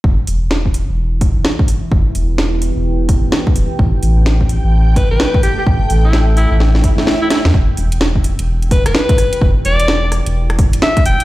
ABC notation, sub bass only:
X:1
M:4/4
L:1/16
Q:"Swing 16ths" 1/4=128
K:Em
V:1 name="Sub bass" clef=bass
E,,, z E,,,4- E,,, E,,,4 E,,, z4 | E,,, z E,,,4- E,,, E,,,4 z3 E,,, z | A,,, z A,,,4- A,,, A,,,4 A,,, z4 | A,,, z A,,,4- A,,, A,,,4 z4 E,, |
E,,, z E,,,4- E,,, E,,,4 E,,, z4 | E,,, z E,,,4- E,,, E,,,4 z3 E,,, z |]